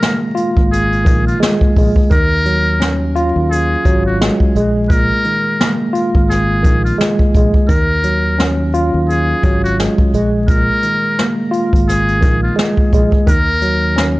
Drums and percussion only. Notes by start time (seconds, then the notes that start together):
0.02 snare, closed hi-hat
0.37 closed hi-hat
0.57 kick
0.73 closed hi-hat
0.92 closed hi-hat
1.06 kick, closed hi-hat
1.28 closed hi-hat
1.43 snare, closed hi-hat
1.61 kick
1.76 kick, open hi-hat
1.96 kick
2.11 kick, closed hi-hat
2.46 closed hi-hat
2.81 snare, closed hi-hat
3.16 closed hi-hat
3.52 closed hi-hat
3.85 kick, closed hi-hat
4.22 snare, closed hi-hat
4.40 kick
4.56 closed hi-hat
4.90 kick, closed hi-hat
5.25 closed hi-hat
5.60 snare, closed hi-hat
5.95 closed hi-hat
6.15 kick
6.31 snare, closed hi-hat
6.64 kick, closed hi-hat
6.86 closed hi-hat
7.01 snare, closed hi-hat
7.19 kick
7.34 kick, closed hi-hat
7.54 kick
7.69 kick, closed hi-hat
8.04 closed hi-hat
8.39 snare, closed hi-hat
8.74 closed hi-hat
9.10 closed hi-hat
9.43 kick, closed hi-hat
9.65 closed hi-hat
9.80 snare, closed hi-hat
9.98 kick
10.14 closed hi-hat
10.48 kick, closed hi-hat
10.83 closed hi-hat
11.19 snare, closed hi-hat
11.53 closed hi-hat
11.73 kick, closed hi-hat
11.89 snare, closed hi-hat
12.08 closed hi-hat
12.22 kick, closed hi-hat
12.59 snare, closed hi-hat
12.77 kick
12.93 kick, closed hi-hat
13.12 kick
13.27 kick, closed hi-hat
13.62 closed hi-hat
13.98 snare, closed hi-hat